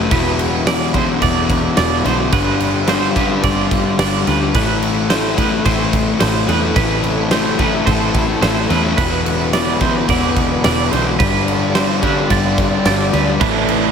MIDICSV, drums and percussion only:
0, 0, Header, 1, 2, 480
1, 0, Start_track
1, 0, Key_signature, 0, "minor"
1, 0, Tempo, 554017
1, 95, Time_signature, 4, 2, 24, 8
1, 12058, End_track
2, 0, Start_track
2, 0, Title_t, "Drums"
2, 96, Note_on_c, 9, 49, 94
2, 98, Note_on_c, 9, 36, 114
2, 182, Note_off_c, 9, 49, 0
2, 185, Note_off_c, 9, 36, 0
2, 339, Note_on_c, 9, 49, 76
2, 425, Note_off_c, 9, 49, 0
2, 580, Note_on_c, 9, 38, 125
2, 580, Note_on_c, 9, 49, 103
2, 667, Note_off_c, 9, 38, 0
2, 667, Note_off_c, 9, 49, 0
2, 698, Note_on_c, 9, 38, 36
2, 785, Note_off_c, 9, 38, 0
2, 816, Note_on_c, 9, 36, 86
2, 817, Note_on_c, 9, 49, 71
2, 903, Note_off_c, 9, 36, 0
2, 904, Note_off_c, 9, 49, 0
2, 1054, Note_on_c, 9, 49, 82
2, 1056, Note_on_c, 9, 36, 85
2, 1141, Note_off_c, 9, 49, 0
2, 1143, Note_off_c, 9, 36, 0
2, 1296, Note_on_c, 9, 36, 87
2, 1299, Note_on_c, 9, 49, 69
2, 1383, Note_off_c, 9, 36, 0
2, 1385, Note_off_c, 9, 49, 0
2, 1534, Note_on_c, 9, 38, 127
2, 1534, Note_on_c, 9, 49, 95
2, 1620, Note_off_c, 9, 38, 0
2, 1620, Note_off_c, 9, 49, 0
2, 1780, Note_on_c, 9, 38, 40
2, 1780, Note_on_c, 9, 49, 72
2, 1867, Note_off_c, 9, 38, 0
2, 1867, Note_off_c, 9, 49, 0
2, 2014, Note_on_c, 9, 49, 88
2, 2015, Note_on_c, 9, 36, 117
2, 2100, Note_off_c, 9, 49, 0
2, 2102, Note_off_c, 9, 36, 0
2, 2256, Note_on_c, 9, 49, 70
2, 2343, Note_off_c, 9, 49, 0
2, 2492, Note_on_c, 9, 38, 114
2, 2492, Note_on_c, 9, 49, 89
2, 2579, Note_off_c, 9, 38, 0
2, 2579, Note_off_c, 9, 49, 0
2, 2620, Note_on_c, 9, 38, 31
2, 2707, Note_off_c, 9, 38, 0
2, 2737, Note_on_c, 9, 36, 86
2, 2739, Note_on_c, 9, 49, 67
2, 2824, Note_off_c, 9, 36, 0
2, 2826, Note_off_c, 9, 49, 0
2, 2975, Note_on_c, 9, 49, 81
2, 2977, Note_on_c, 9, 36, 85
2, 3062, Note_off_c, 9, 49, 0
2, 3063, Note_off_c, 9, 36, 0
2, 3216, Note_on_c, 9, 49, 66
2, 3217, Note_on_c, 9, 36, 86
2, 3303, Note_off_c, 9, 49, 0
2, 3304, Note_off_c, 9, 36, 0
2, 3457, Note_on_c, 9, 38, 127
2, 3457, Note_on_c, 9, 49, 102
2, 3544, Note_off_c, 9, 38, 0
2, 3544, Note_off_c, 9, 49, 0
2, 3700, Note_on_c, 9, 38, 38
2, 3700, Note_on_c, 9, 49, 78
2, 3787, Note_off_c, 9, 38, 0
2, 3787, Note_off_c, 9, 49, 0
2, 3939, Note_on_c, 9, 36, 116
2, 3939, Note_on_c, 9, 49, 99
2, 4026, Note_off_c, 9, 36, 0
2, 4026, Note_off_c, 9, 49, 0
2, 4180, Note_on_c, 9, 49, 71
2, 4267, Note_off_c, 9, 49, 0
2, 4420, Note_on_c, 9, 38, 122
2, 4420, Note_on_c, 9, 49, 106
2, 4507, Note_off_c, 9, 38, 0
2, 4507, Note_off_c, 9, 49, 0
2, 4545, Note_on_c, 9, 38, 33
2, 4632, Note_off_c, 9, 38, 0
2, 4660, Note_on_c, 9, 36, 90
2, 4663, Note_on_c, 9, 49, 72
2, 4747, Note_off_c, 9, 36, 0
2, 4749, Note_off_c, 9, 49, 0
2, 4900, Note_on_c, 9, 36, 85
2, 4901, Note_on_c, 9, 49, 82
2, 4986, Note_off_c, 9, 36, 0
2, 4988, Note_off_c, 9, 49, 0
2, 5139, Note_on_c, 9, 36, 93
2, 5139, Note_on_c, 9, 49, 72
2, 5226, Note_off_c, 9, 36, 0
2, 5226, Note_off_c, 9, 49, 0
2, 5376, Note_on_c, 9, 38, 127
2, 5376, Note_on_c, 9, 49, 103
2, 5462, Note_off_c, 9, 38, 0
2, 5462, Note_off_c, 9, 49, 0
2, 5621, Note_on_c, 9, 38, 37
2, 5621, Note_on_c, 9, 49, 76
2, 5707, Note_off_c, 9, 38, 0
2, 5707, Note_off_c, 9, 49, 0
2, 5857, Note_on_c, 9, 36, 126
2, 5859, Note_on_c, 9, 49, 85
2, 5944, Note_off_c, 9, 36, 0
2, 5946, Note_off_c, 9, 49, 0
2, 6096, Note_on_c, 9, 49, 66
2, 6183, Note_off_c, 9, 49, 0
2, 6334, Note_on_c, 9, 38, 122
2, 6334, Note_on_c, 9, 49, 92
2, 6421, Note_off_c, 9, 38, 0
2, 6421, Note_off_c, 9, 49, 0
2, 6455, Note_on_c, 9, 38, 32
2, 6542, Note_off_c, 9, 38, 0
2, 6577, Note_on_c, 9, 36, 96
2, 6578, Note_on_c, 9, 49, 67
2, 6664, Note_off_c, 9, 36, 0
2, 6664, Note_off_c, 9, 49, 0
2, 6818, Note_on_c, 9, 36, 85
2, 6820, Note_on_c, 9, 49, 83
2, 6905, Note_off_c, 9, 36, 0
2, 6907, Note_off_c, 9, 49, 0
2, 7058, Note_on_c, 9, 36, 99
2, 7058, Note_on_c, 9, 49, 69
2, 7144, Note_off_c, 9, 36, 0
2, 7144, Note_off_c, 9, 49, 0
2, 7300, Note_on_c, 9, 38, 122
2, 7300, Note_on_c, 9, 49, 96
2, 7386, Note_off_c, 9, 38, 0
2, 7386, Note_off_c, 9, 49, 0
2, 7539, Note_on_c, 9, 38, 37
2, 7539, Note_on_c, 9, 49, 75
2, 7626, Note_off_c, 9, 38, 0
2, 7626, Note_off_c, 9, 49, 0
2, 7779, Note_on_c, 9, 36, 120
2, 7782, Note_on_c, 9, 49, 95
2, 7866, Note_off_c, 9, 36, 0
2, 7869, Note_off_c, 9, 49, 0
2, 8024, Note_on_c, 9, 49, 77
2, 8111, Note_off_c, 9, 49, 0
2, 8259, Note_on_c, 9, 38, 124
2, 8259, Note_on_c, 9, 49, 100
2, 8346, Note_off_c, 9, 38, 0
2, 8346, Note_off_c, 9, 49, 0
2, 8380, Note_on_c, 9, 38, 32
2, 8466, Note_off_c, 9, 38, 0
2, 8495, Note_on_c, 9, 49, 72
2, 8499, Note_on_c, 9, 36, 96
2, 8581, Note_off_c, 9, 49, 0
2, 8586, Note_off_c, 9, 36, 0
2, 8739, Note_on_c, 9, 49, 95
2, 8740, Note_on_c, 9, 36, 91
2, 8825, Note_off_c, 9, 49, 0
2, 8827, Note_off_c, 9, 36, 0
2, 8978, Note_on_c, 9, 49, 69
2, 8980, Note_on_c, 9, 36, 92
2, 9065, Note_off_c, 9, 49, 0
2, 9067, Note_off_c, 9, 36, 0
2, 9220, Note_on_c, 9, 38, 127
2, 9220, Note_on_c, 9, 49, 109
2, 9307, Note_off_c, 9, 38, 0
2, 9307, Note_off_c, 9, 49, 0
2, 9466, Note_on_c, 9, 38, 36
2, 9466, Note_on_c, 9, 49, 75
2, 9553, Note_off_c, 9, 38, 0
2, 9553, Note_off_c, 9, 49, 0
2, 9703, Note_on_c, 9, 36, 125
2, 9704, Note_on_c, 9, 49, 85
2, 9790, Note_off_c, 9, 36, 0
2, 9790, Note_off_c, 9, 49, 0
2, 9945, Note_on_c, 9, 49, 67
2, 10032, Note_off_c, 9, 49, 0
2, 10181, Note_on_c, 9, 38, 123
2, 10181, Note_on_c, 9, 49, 86
2, 10268, Note_off_c, 9, 38, 0
2, 10268, Note_off_c, 9, 49, 0
2, 10305, Note_on_c, 9, 38, 33
2, 10392, Note_off_c, 9, 38, 0
2, 10420, Note_on_c, 9, 49, 65
2, 10421, Note_on_c, 9, 36, 89
2, 10507, Note_off_c, 9, 49, 0
2, 10508, Note_off_c, 9, 36, 0
2, 10658, Note_on_c, 9, 49, 83
2, 10661, Note_on_c, 9, 36, 82
2, 10744, Note_off_c, 9, 49, 0
2, 10747, Note_off_c, 9, 36, 0
2, 10897, Note_on_c, 9, 49, 66
2, 10899, Note_on_c, 9, 36, 97
2, 10984, Note_off_c, 9, 49, 0
2, 10986, Note_off_c, 9, 36, 0
2, 11138, Note_on_c, 9, 38, 125
2, 11138, Note_on_c, 9, 49, 101
2, 11225, Note_off_c, 9, 38, 0
2, 11225, Note_off_c, 9, 49, 0
2, 11379, Note_on_c, 9, 38, 36
2, 11379, Note_on_c, 9, 49, 70
2, 11466, Note_off_c, 9, 38, 0
2, 11466, Note_off_c, 9, 49, 0
2, 11618, Note_on_c, 9, 36, 127
2, 11619, Note_on_c, 9, 49, 90
2, 11705, Note_off_c, 9, 36, 0
2, 11705, Note_off_c, 9, 49, 0
2, 11857, Note_on_c, 9, 49, 72
2, 11943, Note_off_c, 9, 49, 0
2, 12058, End_track
0, 0, End_of_file